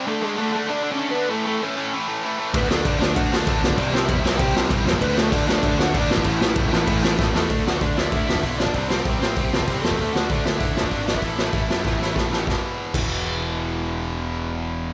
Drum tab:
CC |----------------|----------------|x---x---x---x---|x---x---x---x---|
HH |----------------|----------------|----------------|----------------|
SD |----------------|----------------|--o---o---o---o-|--o---o---o---o-|
BD |----------------|----------------|o---o---o---o--o|o---o---o---o--o|

CC |x---x---x---x---|x---x---x-------|----------------|----------------|
HH |----------------|----------------|o---o---o---o---|o---o---o---o---|
SD |--o---o---o---o-|--o---o---o-o-o-|--o---o---o---o-|--o---o---o---o-|
BD |o---o---o---o--o|o---o---o---o---|o---o---o--oo--o|o---o---o--oo--o|

CC |----------------|----------------|------x---------|----------------|
HH |o---o---o---o---|o---o-----------|----------------|----------------|
SD |--o---o---o---o-|--o---o-o-o-o-o-|o---------------|----------------|
BD |o---o---o--oo--o|o---o---o---o---|o-----o---------|----------------|